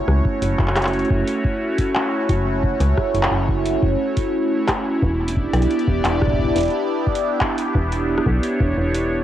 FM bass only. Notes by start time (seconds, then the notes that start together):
0.08 C#2
0.42 F#1
0.59 F#1
1.10 F#1
2.30 F#1
2.81 C#2
3.15 F#1
3.32 F#1
3.83 F#1
5.02 E1
5.53 B1
5.88 E1
6.04 E1
6.56 E1
7.75 E1
8.26 B1
8.60 E1
8.77 E1